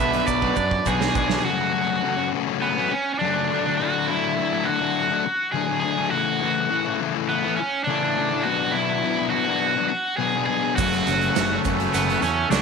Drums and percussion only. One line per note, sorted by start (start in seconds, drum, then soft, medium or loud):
0.13 closed hi-hat medium
0.27 kick medium
0.27 shaker loud
0.41 kick medium
0.41 shaker soft
0.56 kick medium
0.56 shaker medium
0.71 kick medium
0.86 kick medium
0.86 shaker loud
1.01 snare medium
1.01 shaker soft
1.15 kick loud
1.15 shaker medium
1.30 snare medium
10.78 kick loud
10.78 crash loud
10.78 shaker loud
10.93 closed hi-hat medium
10.93 shaker soft
11.07 closed hi-hat medium
11.07 shaker medium
11.21 closed hi-hat medium
11.36 snare loud
11.36 closed hi-hat loud
11.36 shaker loud
11.64 kick medium
11.64 closed hi-hat medium
11.64 shaker medium
11.80 closed hi-hat medium
11.94 closed hi-hat loud
11.94 shaker loud
12.10 closed hi-hat medium
12.22 closed hi-hat medium
12.22 shaker medium
12.52 snare loud
12.52 closed hi-hat loud
12.52 shaker loud